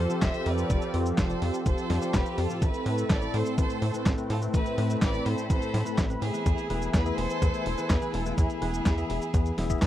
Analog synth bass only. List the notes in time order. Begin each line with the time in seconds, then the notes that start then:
0.22 F1
0.46 F2
0.70 F1
0.94 F2
1.18 F1
1.42 F2
1.66 F1
1.90 F2
2.14 F1
2.38 F2
2.62 A1
2.86 A2
3.10 A1
3.34 A2
3.58 A1
3.82 A2
4.06 A1
4.30 A2
4.54 A1
4.78 A2
5.02 A1
5.26 A2
5.50 A1
5.74 A2
5.98 A1
6.22 A2
6.46 E2
6.70 E1
6.94 E2
7.18 E1
7.42 E2
7.66 E1
7.90 E2
8.14 E1
8.38 E2
8.62 E1
8.86 E2
9.10 E1
9.34 E2
9.58 E1
9.82 E2